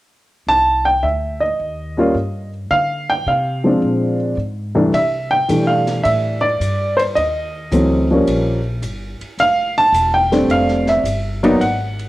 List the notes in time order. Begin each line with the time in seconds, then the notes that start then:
0.47 C2 A5
0.85 G5
1.03 D2 E5
1.40 D#5
1.59 D#2
1.97 G3 A#3 C#4 F4
2.14 G2
2.71 D3 F5
3.10 G5
3.26 C3 F5
3.64 F3 G#3 C4 D4
3.82 A#2
4.37 G#2
4.75 C2 E3 G3 A3 D4
4.93 C3 E5, ride
5.31 G5
5.49 B2 E3 G3 A3 D4, hi-hat pedal, ride
5.67 F5
5.87 snare, ride
6.04 A2 E5, ride
6.41 D5
6.60 G2, hi-hat pedal, ride
6.97 C5, ride
7.15 D#2 D#5, ride
7.71 C#2 E3 F#3 A3 C4, hi-hat pedal, ride
8.11 F3 G3 A#3 C#4
8.27 A#1, ride
8.82 G1, hi-hat pedal, ride
9.21 muted upright bass stroke, ride
9.38 F1 F5, ride
9.78 A5
9.92 E1, hi-hat pedal, ride
10.14 G5
10.32 G3 A3 C4 D4, snare, ride
10.48 F1 F5, ride
10.68 snare
10.86 E5, snare
11.03 G1, hi-hat pedal, ride
11.43 F#3 A#3 B3 D#4 D5, ride
11.60 G#1 F#5, ride
11.99 ride